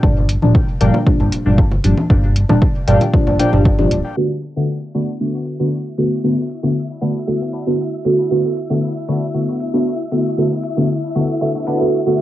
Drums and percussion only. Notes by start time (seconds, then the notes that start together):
0.03 kick
0.29 closed hi-hat
0.42 low conga
0.55 kick
0.81 closed hi-hat
0.94 low bongo
1.07 kick
1.20 low bongo
1.32 closed hi-hat
1.58 kick
1.72 low bongo
1.84 closed hi-hat
1.98 low conga
2.10 kick
2.36 closed hi-hat
2.49 low bongo, low conga
2.62 kick
2.88 closed hi-hat
3.01 closed hi-hat, low bongo
3.14 kick
3.27 low bongo
3.39 closed hi-hat
3.53 low bongo
3.65 kick
3.79 low conga
3.91 closed hi-hat
4.43 closed hi-hat
4.95 closed hi-hat
5.46 closed hi-hat
5.98 closed hi-hat
6.50 closed hi-hat
7.01 closed hi-hat
7.53 closed hi-hat
8.05 closed hi-hat
8.57 closed hi-hat
9.08 closed hi-hat
9.60 closed hi-hat
10.12 closed hi-hat
10.63 closed hi-hat
11.15 closed hi-hat
11.67 closed hi-hat